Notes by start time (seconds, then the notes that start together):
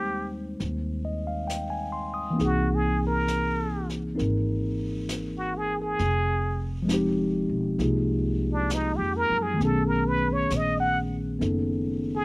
Already playing: D#2 G3 G#3 C4 D#4 G4 C5
0.60 D#2, brush sweep, snare
1.05 D#5
1.27 F5
1.48 G5, snare, hi-hat pedal
1.70 G#5
1.92 C6
2.14 D#6
2.30 E3 A#3
2.36 C2 C4 D#4, brush sweep, snare
2.41 F#4 G#4
2.75 G#4
3.07 A#4
3.28 snare, hi-hat pedal
3.89 snare
4.15 C4 D#4 A#4
4.19 G#1, brush sweep, snare
5.09 snare, hi-hat pedal
5.38 F#4
5.58 G#4
5.82 G#4
5.99 F1, brush sweep, snare
6.82 F3 G#3
6.88 C4 D#4, snare, hi-hat pedal
6.94 G4
7.49 E1
7.79 C2 A#3 D#4 F4 G#4, brush sweep, snare
8.53 D4
8.70 snare, hi-hat pedal
8.75 D#4
8.96 F2 G4
9.17 A#4
9.30 F#2
9.42 G#4
9.54 D#3 A3
9.59 B1 B3 C#4, brush sweep, snare
9.65 G#4 A4
9.87 A#4
10.08 B4
10.33 C#5
10.50 A#1, snare, hi-hat pedal
10.56 D#5
10.80 F#5
11.39 F#1 B3 C#4 D#4 A4, brush sweep, snare
12.16 G#4